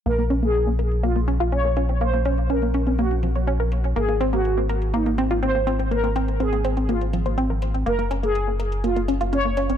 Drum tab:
HH |xxxxx-xxxxxxx-xx|xxxxxxxxxxxxx-xx|xxxxx-xxxxxxx-xx|xxxxxxxxxxxxx-xx|

HH |xxxxx-xxxxxxx-xx|